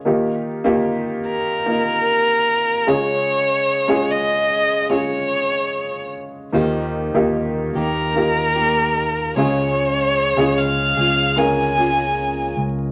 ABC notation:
X:1
M:4/4
L:1/16
Q:1/4=74
K:Dblyd
V:1 name="Violin"
z6 B8 d2- | d4 e4 d6 z2 | z6 B8 d2- | d4 f4 a6 z2 |]
V:2 name="Nylon-string guitar"
z16 | z16 | [E,F,B,EG]6 [B,EG]4 [B,EG]4 [D,F,DFA]2- | [D,F,DFA]6 [DFA]4 [DFA]6 |]
V:3 name="Upright piano"
[B,EFG]3 [B,EFG]4- [B,EFG] [B,EFB]6 [A,DFA]2- | [A,DFA]3 [A,DFA]4- [A,DFA] [A,DFA]8 | [B,EFG]3 [B,EFG]4- [B,EFG] [B,EFG]6 [A,DFA]2- | [A,DFA]3 [A,DFA]4- [A,DFA] [A,DFB]8 |]
V:4 name="Upright piano" clef=bass
E,6 z8 D,2- | D,4 z12 | E,6 z8 D,2- | D,4 z12 |]
V:5 name="Fingered electric bass" clef=bass
z16 | z16 | E,,3 E,,3 E,,8 D,,2- | D,,3 D,,3 D,,8 D,,2 |]